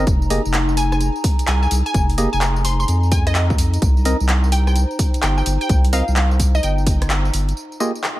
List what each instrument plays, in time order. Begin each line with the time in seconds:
Already playing: ambient pad D#4 C5 A#5
0.07 sub bass F1, kick, closed hi-hat, tambourine
0.22 tambourine
0.30 synth stab A#3 G4 G#4 D#5, ambient pad G#4 G#5, open hi-hat, tambourine
0.45 sub bass F1, tambourine
0.54 clap, closed hi-hat, tambourine
0.69 tambourine
0.77 synth pluck G#5, open hi-hat, tambourine
0.92 synth pluck G#5, cross-stick, tambourine
1.01 closed hi-hat, tambourine
1.16 tambourine
1.24 kick, open hi-hat, tambourine
1.39 closed hi-hat, tambourine
1.47 sub bass C2, synth pluck G#5, clap, closed hi-hat, tambourine
1.63 synth pluck G#5, tambourine
1.71 sub bass C2, open hi-hat, tambourine
1.86 synth pluck G#5, closed hi-hat, tambourine
1.94 sub bass F1, kick, closed hi-hat, tambourine
2.10 open hi-hat, tambourine
2.18 synth stab A#3 G4 G#4 D#5, open hi-hat, tambourine
2.33 sub bass F1, synth pluck G#5, tambourine
2.41 clap, closed hi-hat, tambourine
2.56 tambourine
2.65 synth pluck C6, open hi-hat, tambourine
2.80 synth pluck C6, tambourine
2.88 sub bass F2, closed hi-hat, tambourine
3.03 tambourine
3.12 synth pluck G#5, kick, open hi-hat, tambourine
3.27 synth pluck D#5, cross-stick, closed hi-hat, tambourine
3.35 synth pluck D#5, clap, closed hi-hat, tambourine
3.50 kick, tambourine
3.58 sub bass F2, open hi-hat, tambourine
3.74 closed hi-hat, tambourine
3.82 sub bass C2, kick, closed hi-hat, tambourine
3.97 ambient pad C5, tambourine
4.05 synth stab C4 A#4 D#5, open hi-hat, tambourine
4.20 sub bass C2, tambourine
4.29 clap, closed hi-hat, tambourine
4.44 tambourine
4.52 synth pluck G5, open hi-hat, tambourine
4.67 synth pluck G5, cross-stick, tambourine
4.76 closed hi-hat, tambourine
4.91 tambourine
4.99 kick, open hi-hat, tambourine
5.14 closed hi-hat, tambourine
5.23 sub bass G1, synth pluck G5, clap, closed hi-hat, tambourine
5.38 synth pluck G5, tambourine
5.46 sub bass G1, open hi-hat, tambourine
5.61 synth pluck G5, closed hi-hat, tambourine
5.69 sub bass C2, kick, closed hi-hat, tambourine
5.85 open hi-hat, tambourine
5.93 synth stab C4 A#4 D#5, synth pluck F5, open hi-hat, tambourine
6.08 sub bass C2, tambourine
6.16 clap, closed hi-hat, tambourine
6.31 tambourine
6.40 kick, open hi-hat, tambourine
6.55 synth pluck D#5, tambourine
6.63 sub bass G1, synth pluck G5, closed hi-hat, tambourine
6.78 tambourine
6.87 kick, open hi-hat, tambourine
7.02 cross-stick, closed hi-hat, tambourine
7.10 clap, closed hi-hat, tambourine
7.25 tambourine
7.33 sub bass G1, open hi-hat, tambourine
7.49 closed hi-hat, tambourine
7.57 ambient pad F4, tambourine
7.72 ambient pad G#4, tambourine
7.77 synth stab A#3 F4 G4 G#4 D#5, ambient pad D#5, tambourine
7.95 tambourine
8.03 ambient pad G#5, clap, tambourine